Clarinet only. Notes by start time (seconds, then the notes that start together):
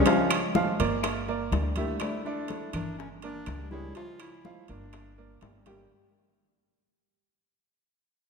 Already playing: C#4
1.77 A3
2.01 A3
2.24 D4
2.73 D4
2.98 C#4
3.23 D4
3.71 E4
3.95 F4
4.20 E4
4.69 D4